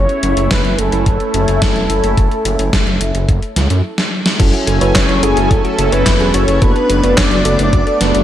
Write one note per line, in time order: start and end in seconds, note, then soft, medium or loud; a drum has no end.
0.00 3.80 A3 medium
0.00 3.80 C#4 medium
0.00 3.80 E4 medium
0.00 0.52 C#5 loud
0.09 closed hi-hat soft
0.23 0.35 F#1 loud
0.23 closed hi-hat medium
0.37 0.48 F#1 medium
0.37 closed hi-hat soft
0.51 0.62 F#1 loud
0.51 0.80 B4 loud
0.51 kick loud
0.51 snare loud
0.51 closed hi-hat soft
0.65 0.76 F#1 medium
0.65 closed hi-hat soft
0.78 0.90 F#1 medium
0.78 3.84 A4 loud
0.78 closed hi-hat medium
0.92 1.04 F#1 medium
0.92 closed hi-hat medium
1.06 1.18 F#1 loud
1.06 kick loud
1.06 closed hi-hat medium
1.20 closed hi-hat soft
1.34 1.46 F#1 loud
1.34 closed hi-hat medium
1.48 1.60 F#1 medium
1.48 closed hi-hat soft
1.62 1.73 F#1 loud
1.62 kick loud
1.62 snare loud
1.62 closed hi-hat medium
1.76 1.87 E1 medium
1.76 closed hi-hat soft
1.90 2.01 F#1 medium
1.90 closed hi-hat medium
2.04 2.15 F#1 medium
2.04 closed hi-hat medium
2.17 2.29 F#1 loud
2.17 kick loud
2.17 closed hi-hat soft
2.31 closed hi-hat soft
2.45 2.57 F#1 medium
2.45 closed hi-hat medium
2.59 2.71 F#1 medium
2.59 closed hi-hat medium
2.73 2.85 F#1 loud
2.73 kick loud
2.73 snare loud
2.73 closed hi-hat medium
2.87 2.98 F#1 medium
2.87 closed hi-hat soft
3.01 3.12 F#1 medium
3.01 closed hi-hat medium
3.15 3.26 F#1 medium
3.15 closed hi-hat medium
3.29 3.40 F#1 loud
3.29 kick loud
3.29 closed hi-hat medium
3.42 closed hi-hat soft
3.56 3.68 C#2 medium
3.56 snare medium
3.56 closed hi-hat loud
3.70 3.82 F#2 medium
3.70 closed hi-hat medium
3.98 snare medium
4.26 snare loud
4.39 4.51 F#1 loud
4.39 6.60 F#3 medium
4.39 6.60 C#4 medium
4.39 4.78 C#4 medium
4.39 6.60 E4 medium
4.39 4.78 E4 medium
4.39 4.48 E4 loud
4.39 4.78 F#4 medium
4.39 6.60 A4 medium
4.39 4.78 A4 loud
4.39 6.60 G#5 medium
4.39 kick loud
4.39 closed hi-hat medium
4.39 crash loud
4.53 4.62 F#4 loud
4.53 closed hi-hat soft
4.67 4.79 F#1 medium
4.67 4.76 A4 medium
4.67 closed hi-hat medium
4.81 4.93 F#1 medium
4.81 5.20 C#4 loud
4.81 5.20 E4 medium
4.81 5.20 F#4 medium
4.81 5.20 B4 loud
4.81 4.90 C#5 loud
4.81 closed hi-hat medium
4.95 5.07 F#1 loud
4.95 5.24 C#5 loud
4.95 5.21 C#5 medium
4.95 5.04 E5 medium
4.95 kick loud
4.95 snare loud
4.95 clap loud
4.95 closed hi-hat medium
5.09 5.21 F#1 medium
5.09 5.14 E4 medium
5.09 closed hi-hat soft
5.23 5.35 F#1 loud
5.23 5.38 C#4 medium
5.23 5.38 E4 medium
5.23 5.36 F#4 loud
5.23 5.38 F#4 medium
5.23 5.49 G#4 medium
5.23 5.52 G#4 medium
5.23 5.38 A4 medium
5.23 closed hi-hat loud
5.37 5.48 F#1 medium
5.37 5.50 A4 medium
5.37 closed hi-hat medium
5.50 5.62 F#1 loud
5.50 5.59 E4 loud
5.50 5.89 A4 loud
5.50 5.94 A4 medium
5.50 kick loud
5.50 closed hi-hat medium
5.65 5.73 F#4 loud
5.65 closed hi-hat soft
5.78 5.90 F#1 loud
5.78 6.17 C#4 medium
5.78 6.17 E4 medium
5.78 6.17 F#4 medium
5.78 5.87 A4 medium
5.78 6.17 A4 medium
5.78 closed hi-hat loud
5.92 6.04 F#1 medium
5.92 6.31 B4 loud
5.92 6.35 B4 loud
5.92 6.01 C#5 loud
5.92 closed hi-hat medium
6.06 6.18 F#1 loud
6.06 6.15 E5 medium
6.06 kick loud
6.06 snare loud
6.06 clap loud
6.06 closed hi-hat medium
6.20 6.32 E1 medium
6.20 6.44 C#4 medium
6.20 6.25 E4 medium
6.20 6.44 E4 medium
6.20 6.44 F#4 medium
6.20 6.44 G#4 loud
6.20 closed hi-hat soft
6.34 6.46 F#1 loud
6.34 6.47 F#4 loud
6.34 6.60 C#5 loud
6.34 6.63 C#5 loud
6.34 closed hi-hat medium
6.48 6.60 F#1 medium
6.48 6.61 A4 medium
6.48 closed hi-hat medium
6.61 6.73 F#1 loud
6.61 8.24 A3 medium
6.61 8.24 B3 medium
6.61 7.00 B3 medium
6.61 8.24 D4 medium
6.61 7.00 D4 medium
6.61 6.71 F#4 loud
6.61 7.00 F#4 medium
6.61 7.00 A4 loud
6.61 7.13 B4 loud
6.61 7.17 B4 loud
6.61 kick loud
6.61 closed hi-hat medium
6.76 6.85 A4 loud
6.76 closed hi-hat soft
6.90 7.01 F#1 loud
6.90 6.98 B4 medium
6.90 closed hi-hat loud
7.03 7.15 F#1 medium
7.03 7.42 B3 medium
7.03 7.42 D4 medium
7.03 7.42 F#4 medium
7.03 7.42 B4 loud
7.03 7.12 D5 loud
7.03 closed hi-hat medium
7.17 7.29 F#1 loud
7.17 8.24 D5 loud
7.17 7.26 F#5 medium
7.17 kick loud
7.17 snare loud
7.17 clap loud
7.17 closed hi-hat medium
7.31 7.43 F#1 medium
7.31 7.37 F#4 medium
7.31 closed hi-hat soft
7.45 7.57 F#1 loud
7.45 7.60 B3 medium
7.45 7.60 D4 medium
7.45 7.60 F#4 medium
7.45 7.58 A4 loud
7.45 7.60 A4 medium
7.45 closed hi-hat loud
7.59 7.71 F#1 medium
7.59 7.72 B4 medium
7.59 closed hi-hat medium
7.73 7.85 F#1 loud
7.73 7.82 F#4 loud
7.73 kick loud
7.73 closed hi-hat medium
7.87 7.96 A4 loud
7.87 closed hi-hat soft
8.01 8.12 F#1 loud
8.01 8.24 B3 medium
8.01 8.24 D4 medium
8.01 8.24 F#4 medium
8.01 8.24 A4 medium
8.01 8.10 B4 medium
8.01 snare medium
8.01 closed hi-hat loud
8.15 8.24 F#1 medium
8.15 8.23 D5 loud
8.15 closed hi-hat medium